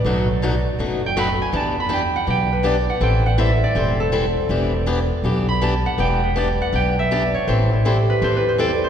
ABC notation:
X:1
M:4/4
L:1/16
Q:"Swing" 1/4=162
K:Em
V:1 name="Harp"
z8 z2 g2 b2 ^g2 | a2 b2 g2 f2 g2 B2 d2 f2 | g2 f2 e2 d2 c2 A2 z4 | z8 z2 b2 a2 f2 |
g2 B2 d2 f2 g2 e2 d2 ^c2 | c2 E2 G2 B2 (3c2 B2 c2 d2 c2 |]
V:2 name="Steel-string acoustic guitar"
[B,,F,A,^DF]2 z2 [B,,F,A,DF] z3 [B,,F,A,DF]2 z2 [B,,F,A,DF] z3 | [E,B,DG]2 z2 [E,B,DG] z3 [E,B,DG]2 z2 [E,B,DG] z3 | [E,G,CEA]2 z2 [E,G,CEA] z3 [E,G,CEA]2 z2 [E,G,CEA] z3 | [E,B,DG]2 z2 [E,B,DG] z3 [E,B,DG]2 z2 [E,B,DG] z3 |
[E,B,DG]2 z2 [E,B,DG] z3 [E,B,DG]2 z2 [E,B,DG] z3 | [E,G,CEA]2 z2 [E,G,CEA] z3 [E,G,CEA]2 z2 [E,G,CEA] z3 |]
V:3 name="Upright bass" clef=bass
B,,,8 F,,,8 | E,,8 B,,,8 | A,,,8 E,,,8 | E,,,8 B,,,8 |
E,,,8 B,,,8 | A,,,8 E,,8 |]